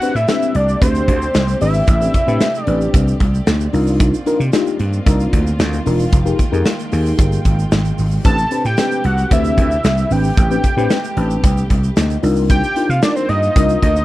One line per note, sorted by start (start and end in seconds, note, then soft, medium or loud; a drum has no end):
0.00 3.70 C3 medium
0.00 3.70 A3 medium
0.00 3.70 C4 medium
0.00 0.14 C4 medium
0.00 0.14 D4 medium
0.00 3.70 G4 medium
0.00 0.14 G4 medium
0.00 0.14 B4 medium
0.00 6.09 D5 medium
0.00 0.17 F#5 loud
0.00 closed hi-hat medium
0.00 shaker medium
0.15 0.24 A2 medium
0.15 0.57 E5 loud
0.15 shaker soft
0.28 0.53 C4 medium
0.28 0.53 D4 medium
0.28 0.53 G4 medium
0.28 0.53 B4 medium
0.28 snare loud
0.28 closed hi-hat medium
0.28 shaker medium
0.42 shaker soft
0.55 0.74 C2 medium
0.55 0.81 D5 medium
0.55 closed hi-hat medium
0.69 shaker soft
0.81 1.00 D2 loud
0.81 1.18 C4 medium
0.81 1.18 D4 medium
0.81 1.18 G4 medium
0.81 1.57 C5 loud
0.81 1.18 C5 medium
0.81 kick loud
0.81 closed hi-hat medium
0.81 shaker medium
0.95 shaker medium
1.08 1.27 D2 medium
1.08 kick medium
1.08 closed hi-hat medium
1.22 shaker soft
1.35 1.53 C2 medium
1.35 snare loud
1.35 closed hi-hat medium
1.35 shaker medium
1.48 shaker soft
1.61 1.80 G#1 loud
1.61 1.79 C4 medium
1.61 1.79 D4 medium
1.61 1.80 G4 medium
1.61 1.80 B4 medium
1.61 2.65 E5 loud
1.61 open hi-hat medium
1.61 shaker medium
1.74 shaker medium
1.87 2.06 A1 loud
1.87 kick loud
1.87 closed hi-hat medium
1.87 shaker medium
2.01 2.13 C4 medium
2.01 2.13 D4 medium
2.01 2.13 G4 medium
2.01 2.13 B4 medium
2.01 shaker medium
2.14 kick medium
2.14 closed hi-hat medium
2.14 shaker medium
2.27 2.37 A2 medium
2.27 2.45 C4 loud
2.27 2.46 D4 medium
2.27 2.46 G4 medium
2.27 2.46 B4 loud
2.27 shaker soft
2.41 snare loud
2.41 closed hi-hat medium
2.41 shaker medium
2.55 shaker soft
2.65 2.86 A1 medium
2.65 3.16 C4 medium
2.65 3.16 D4 medium
2.65 3.16 G4 medium
2.65 3.16 B4 medium
2.65 3.17 D5 loud
2.65 closed hi-hat medium
2.81 shaker soft
2.94 3.13 C2 loud
2.94 kick loud
2.94 closed hi-hat loud
2.94 shaker medium
3.08 shaker medium
3.20 3.39 C2 medium
3.20 kick medium
3.20 closed hi-hat medium
3.35 shaker soft
3.47 3.66 D2 loud
3.47 snare loud
3.47 closed hi-hat medium
3.47 shaker medium
3.61 shaker medium
3.73 4.11 C2 loud
3.73 8.21 D#3 medium
3.73 8.21 A#3 medium
3.73 6.10 C4 medium
3.73 4.16 D4 medium
3.73 4.16 D#4 medium
3.73 8.21 F4 medium
3.73 4.16 F4 medium
3.73 4.16 A#4 loud
3.73 open hi-hat medium
3.73 shaker medium
3.87 shaker medium
4.00 kick loud
4.00 closed hi-hat medium
4.00 shaker medium
4.14 shaker medium
4.26 4.39 D4 loud
4.26 4.39 D#4 medium
4.26 4.39 F4 medium
4.26 4.39 A#4 loud
4.26 closed hi-hat medium
4.26 shaker medium
4.40 4.49 C3 medium
4.40 shaker soft
4.53 4.77 D4 medium
4.53 4.78 D#4 medium
4.53 4.78 F4 medium
4.53 4.78 G4 medium
4.53 snare loud
4.53 closed hi-hat medium
4.53 shaker medium
4.67 shaker soft
4.79 4.98 G2 medium
4.79 closed hi-hat medium
4.93 shaker soft
5.06 5.25 C2 medium
5.06 5.43 D4 loud
5.06 5.43 D#4 medium
5.06 5.43 F4 medium
5.06 5.43 A#4 loud
5.06 kick loud
5.06 closed hi-hat loud
5.06 shaker medium
5.20 shaker medium
5.33 5.52 D2 medium
5.33 kick medium
5.33 closed hi-hat medium
5.47 shaker medium
5.59 5.78 D2 loud
5.59 snare loud
5.59 closed hi-hat medium
5.59 shaker medium
5.73 shaker soft
5.86 6.05 E1 loud
5.86 6.04 D4 medium
5.86 6.04 D#4 medium
5.86 6.04 F4 medium
5.86 6.05 A#4 medium
5.86 open hi-hat medium
5.86 shaker medium
5.99 shaker soft
6.12 6.31 F1 loud
6.12 8.23 G#3 medium
6.12 8.23 G5 medium
6.12 kick loud
6.12 closed hi-hat medium
6.12 shaker medium
6.25 6.38 D#4 medium
6.25 6.38 G4 medium
6.25 6.38 G#4 medium
6.25 6.38 A#4 medium
6.25 shaker medium
6.39 kick medium
6.39 closed hi-hat medium
6.39 shaker medium
6.52 6.62 F2 medium
6.52 6.70 D#4 loud
6.52 6.71 G4 medium
6.52 6.71 G#4 medium
6.52 6.71 A#4 loud
6.52 shaker soft
6.66 snare loud
6.66 closed hi-hat medium
6.66 shaker medium
6.79 shaker soft
6.92 7.11 D#2 medium
6.92 7.41 D#4 medium
6.92 7.41 G4 medium
6.92 7.41 G#4 medium
6.92 7.41 A#4 medium
6.92 open hi-hat medium
6.92 shaker medium
7.06 shaker soft
7.18 7.37 G1 medium
7.18 kick loud
7.18 closed hi-hat medium
7.18 shaker medium
7.32 shaker medium
7.45 7.64 G#1 loud
7.45 kick medium
7.45 closed hi-hat medium
7.45 shaker soft
7.59 shaker soft
7.72 7.91 G#1 medium
7.72 snare loud
7.72 closed hi-hat medium
7.72 shaker medium
7.85 shaker soft
7.98 8.17 G#1 medium
7.98 open hi-hat medium
7.98 shaker medium
8.11 shaker soft
8.24 8.44 A1 loud
8.24 12.19 C3 medium
8.24 12.19 A3 medium
8.24 8.37 C4 medium
8.24 8.37 D4 medium
8.24 8.37 G4 medium
8.24 10.35 G4 medium
8.24 8.37 B4 medium
8.24 12.19 B4 medium
8.24 8.62 A5 loud
8.24 kick loud
8.24 closed hi-hat medium
8.24 shaker medium
8.38 shaker medium
8.51 8.63 C4 medium
8.51 8.64 D4 medium
8.51 8.64 G4 medium
8.51 8.64 B4 loud
8.51 closed hi-hat medium
8.51 shaker soft
8.65 8.74 A2 medium
8.65 9.07 G5 loud
8.65 shaker soft
8.77 9.02 C4 medium
8.77 9.02 D4 medium
8.77 9.02 G4 medium
8.77 9.02 B4 medium
8.77 snare medium
8.77 closed hi-hat medium
8.77 shaker medium
8.92 shaker soft
9.04 9.23 C2 medium
9.04 9.32 F#5 loud
9.04 closed hi-hat medium
9.18 shaker soft
9.31 9.50 D2 medium
9.31 9.67 C4 medium
9.31 9.68 D4 medium
9.31 9.68 G4 medium
9.31 9.68 B4 medium
9.31 10.14 E5 medium
9.31 kick loud
9.31 closed hi-hat loud
9.31 shaker medium
9.45 shaker medium
9.58 9.76 D2 medium
9.58 kick medium
9.58 closed hi-hat medium
9.71 shaker medium
9.84 10.03 C2 medium
9.84 snare loud
9.84 closed hi-hat medium
9.84 shaker medium
9.98 shaker medium
10.10 10.29 G#1 loud
10.10 10.29 C4 medium
10.10 10.29 D4 medium
10.10 10.29 G4 medium
10.10 10.29 B4 medium
10.10 11.71 G5 loud
10.10 open hi-hat medium
10.10 shaker medium
10.24 shaker medium
10.37 10.56 A1 loud
10.37 12.22 G4 medium
10.37 kick loud
10.37 closed hi-hat medium
10.37 shaker medium
10.50 10.63 C4 medium
10.50 10.63 D4 medium
10.50 10.63 G4 medium
10.50 10.63 B4 medium
10.50 shaker medium
10.64 kick medium
10.64 closed hi-hat medium
10.64 shaker medium
10.77 10.86 A2 medium
10.77 10.95 C4 loud
10.77 10.95 D4 medium
10.77 10.95 G4 medium
10.77 10.96 B4 loud
10.77 shaker soft
10.90 snare loud
10.90 closed hi-hat medium
10.90 shaker medium
11.04 shaker medium
11.17 11.35 A1 medium
11.17 11.65 C4 medium
11.17 11.66 D4 medium
11.17 11.66 G4 medium
11.17 11.66 B4 medium
11.17 11.42 A5 medium
11.17 closed hi-hat medium
11.31 shaker soft
11.44 11.62 C2 medium
11.44 11.93 G5 medium
11.44 kick loud
11.44 closed hi-hat medium
11.44 shaker medium
11.57 shaker medium
11.70 11.89 C2 medium
11.70 kick medium
11.70 closed hi-hat medium
11.84 shaker medium
11.97 12.15 D2 loud
11.97 12.46 D#5 medium
11.97 snare loud
11.97 closed hi-hat medium
11.97 shaker medium
12.10 shaker soft
12.23 12.61 C2 loud
12.23 14.05 D#3 medium
12.23 14.05 A#3 medium
12.23 14.05 C4 medium
12.23 12.65 D4 loud
12.23 12.66 D#4 medium
12.23 12.66 F4 medium
12.23 14.05 F4 medium
12.23 12.66 A#4 loud
12.23 open hi-hat medium
12.23 shaker medium
12.36 shaker medium
12.50 12.91 G5 loud
12.50 kick loud
12.50 closed hi-hat medium
12.50 shaker medium
12.64 shaker medium
12.76 12.88 D4 medium
12.76 12.89 D#4 medium
12.76 12.89 F4 medium
12.76 12.89 A#4 medium
12.76 closed hi-hat medium
12.76 shaker medium
12.89 12.99 C3 medium
12.89 13.04 F5 loud
12.89 shaker soft
13.03 13.27 D4 medium
13.03 13.27 D#4 medium
13.03 13.27 F4 medium
13.03 13.27 A#4 medium
13.03 13.15 D5 medium
13.03 snare loud
13.03 closed hi-hat medium
13.03 shaker medium
13.16 13.30 C5 medium
13.16 shaker soft
13.29 13.48 G2 medium
13.29 13.82 D#5 loud
13.29 closed hi-hat medium
13.43 shaker soft
13.56 13.75 C2 medium
13.56 13.92 D4 medium
13.56 13.92 D#4 medium
13.56 13.93 F4 medium
13.56 13.93 A#4 medium
13.56 kick loud
13.56 closed hi-hat loud
13.56 shaker medium
13.69 shaker medium
13.82 14.01 D2 medium
13.82 14.05 D#5 loud
13.82 kick medium
13.82 closed hi-hat medium
13.96 shaker soft